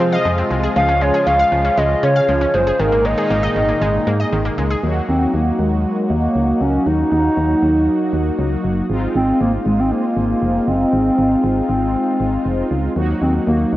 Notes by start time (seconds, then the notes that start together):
Already playing: C3 F3 G#3 C4 F4 G#4 C5
0.00 F3 C4
0.12 D#5 F5
0.25 F2 F3
0.38 C4
0.50 C2 G#3
0.63 G#4
0.76 C#2 C#3 F3 G#3 C#4 F4 G#4 F5
0.89 C#4
1.01 G#3 C#5
1.14 G#4
1.27 C#2 C#4 F5
1.40 F5
1.52 C#2 F3
1.65 C#4
1.78 C#2 G#3 D#5
2.03 C#3 C#4 C#5
2.16 F5
2.29 C#2 F3
2.41 C#4
2.54 F#1 G#3 C5
2.67 G#4
2.79 G#1 A#2 D#3 G#3 A#3 D#4 G#4 A#4
2.92 A#3
3.05 G#3 D#5
3.18 G#4
3.30 G#1 A#3
3.43 D#5
3.56 G#1 D#3
3.69 A#3
3.81 G#1 G#3
4.07 G#2 A#3
4.19 D#5
4.32 G#1 D#3
4.45 A#3
4.58 C#2 G#3
4.70 G#4
4.83 D#2 F#3 A#3 D#4 F#4
5.08 D#2 C4
5.34 D#2 A#3
5.59 D#2 G#3
6.10 D#2 A#3
6.35 C#2
6.61 C#2 C#4
6.86 D#2 D#4
7.12 D#2
7.37 D#2
7.63 D#2
8.13 D#2
8.39 C#2
8.64 F#1
8.90 G#1 G#3 C4 D#4 F4
9.15 G#1 C4
9.41 G#1 A#3
9.66 G#1 G#3
9.79 C4
9.92 A#3
10.17 G#1
10.42 F1
10.68 F#1 C4
10.93 G#1
11.18 G#1
11.44 G#1
11.69 G#1 C4
12.20 G#1
12.46 F1
12.71 C#2
12.96 D#2 F#3 A#3 D#4 F#4
13.22 D#2 C4
13.47 D#2 A#3
13.73 D#2 G#3